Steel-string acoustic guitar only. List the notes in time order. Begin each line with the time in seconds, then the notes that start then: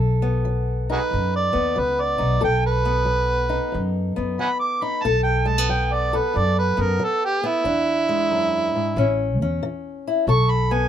Already playing: B2 A4
0.22 B3
0.45 F#3
0.90 D#4
1.11 F#2
1.53 B3
1.76 F#3
2.18 D#4
2.40 B2 A4
2.85 B3
3.05 F#3
3.49 D#4
3.72 F#2
4.16 B3
4.39 F#3
4.82 D#4
5.05 B2 A4
5.45 G#3
5.58 B3
5.69 F#3
6.13 A4
6.34 F#2
6.77 B3
6.99 F#3
7.43 B3
7.64 E2 D4
8.09 G#3
8.31 F#2
8.75 G#2
8.97 A2 C#4
9.42 C#4
9.63 E3
10.07 E4
10.28 B2 A4
10.71 B3